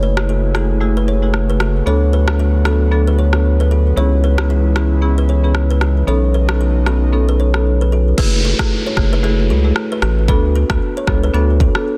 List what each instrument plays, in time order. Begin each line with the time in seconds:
Already playing: analog synth bass F#1, analog synth pad C#3 A3 E4 F#4 G#4, marimba A3 E4 F#4 G#4
0.03 kalimba G#4 B4
0.17 marimba A3 E4 F#4 G#4, cross-stick
0.29 kalimba F#4 A4
0.54 marimba A3 E4 F#4 G#4, kalimba F#4 A4, cross-stick
0.81 marimba A3 E4 F#4 G#4
0.97 kalimba G#4 B4
1.08 kalimba A4 C#5
1.22 marimba A3 E4 F#4 G#4
1.34 cross-stick
1.50 kalimba G#4 B4
1.60 kalimba F#4 A4, cross-stick
1.86 analog synth bass D2, analog synth pad D3 F#3 B3, marimba B3 D4 F#4 A4, kalimba A4 C#5
2.13 kalimba G#4 B4
2.28 marimba B3 D4 F#4 A4, cross-stick
2.39 kalimba F#4 A4
2.65 marimba B3 D4 F#4 A4, kalimba F#4 A4, cross-stick
2.91 marimba B3 D4 F#4 A4
3.07 kalimba G#4 B4
3.19 kalimba A4 C#5
3.33 marimba B3 D4 F#4 A4, cross-stick
3.60 kalimba G#4 B4
3.71 kalimba F#4 A4
3.96 analog synth bass C#2, analog synth pad C#3 E3 G#3 E4, marimba B3 C#4 E4 G#4, kalimba G#4 C#5
4.24 kalimba G#4 B4
4.38 marimba B3 C#4 E4 G#4, cross-stick
4.50 kalimba E4 G#4
4.76 marimba B3 C#4 E4 G#4, kalimba E4 G#4, cross-stick
5.02 marimba B3 C#4 E4 G#4
5.18 kalimba G#4 B4
5.29 kalimba A4 C#5
5.44 marimba B3 C#4 E4 G#4
5.55 cross-stick
5.71 kalimba G#4 B4
5.81 kalimba E4 G#4, cross-stick
6.07 analog synth bass B1, analog synth pad F#3 A3 D#4, marimba B3 C#4 D#4 A4, kalimba A4 C#5
6.34 kalimba G#4 B4
6.49 marimba B3 C#4 D#4 A4, cross-stick
6.61 kalimba F#4 A4
6.86 marimba B3 C#4 D#4 A4, kalimba F#4 A4, cross-stick
7.12 marimba B3 C#4 D#4 A4
7.29 kalimba G#4 B4
7.40 kalimba A4 C#5
7.54 marimba B3 C#4 D#4 A4, cross-stick
7.81 kalimba G#4 B4
7.92 kalimba F#4 A4
8.18 analog synth bass F#1, marimba A3 E4 F#4 G#4, kalimba G#4 B4, kick, crash, downlifter
8.45 kalimba F#4 A4
8.59 marimba A3 E4 F#4 G#4, kalimba F#4 A4, kick, cross-stick
8.86 kalimba A4 C#5
8.96 analog synth bass F#1, marimba A3 E4 F#4 G#4, kick, cross-stick
9.13 kalimba G#4 B4
9.23 marimba A3 E4 F#4 G#4, kalimba F#4 A4
9.50 analog synth bass C#2, kalimba F#4 A4
9.64 marimba A3 E4 F#4 G#4
9.76 cross-stick
9.92 kalimba G#4 B4
10.02 analog synth bass A1, kalimba F#4 A4, cross-stick
10.28 analog synth bass D2, marimba B3 D4 F#4 A4, kalimba F#4 B4, kick
10.56 kalimba F#4 A4
10.70 analog synth bass D2, marimba B3 D4 F#4 A4, kalimba F#4 A4, kick, cross-stick
10.97 kalimba A4 C#5
11.07 analog synth bass C#2, marimba B3 D4 F#4 A4, kick, cross-stick
11.23 kalimba G#4 B4
11.33 analog synth bass D2, marimba B3 D4 F#4 A4, kalimba F#4 A4
11.60 kalimba F#4 A4, kick
11.75 marimba B3 D4 F#4 A4, cross-stick